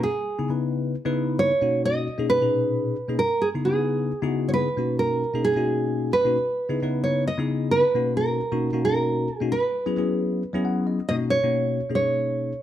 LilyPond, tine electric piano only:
\new Staff \with { instrumentName = "Tine electric piano" } { \time 7/8 \key b \major \tempo 4 = 133 << { r2. r8 | r2. r8 | r2. r8 | r2. r8 |
r2. r8 | r2. r8 | r2 r8 fis''8 dis''8 | r2. r8 | } \\ { r8. <cis b dis' e' gis'>16 <cis b dis' e' b'>4 r16 <cis b dis' e' b'>4 r16 | <b, ais cis' dis' fis'>4 r16 <b, ais cis' dis' gis'>8 <ais, b, cis' dis' gis'>4~ <ais, b, cis' dis' gis'>16 r16 <b, ais cis' dis' gis'>16 | r8. <cis b dis' e' gis'>16 <cis b dis' e' b'>4 r16 <cis b dis' e' gis'>4 r16 | <b, ais cis' dis' fis'>4 r16 <b, ais cis' dis' gis'>8 <b, ais cis' dis' fis'>4~ <b, ais cis' dis' fis'>16 r16 <b, ais cis' dis' fis'>16 |
r8. <cis b dis' e' gis'>16 <cis b dis' e' b'>4 r16 <cis b dis' e' gis'>4 r16 | <b, ais cis' dis' fis'>4 r16 <b, ais cis' dis' fis'>8 <b, ais cis' dis' fis'>4~ <b, ais cis' dis' fis'>16 r16 <b, ais cis' dis' fis'>16 | r8. <fis b cis' e' gis'>16 <fis b cis' e' gis'>4 r16 <fis b cis' e' gis'>4 r16 | <b, ais cis' dis' fis'>8 r16 <b, ais cis' dis' fis'>8. r16 <b, ais cis' dis' gis'>4. r16 | } >> }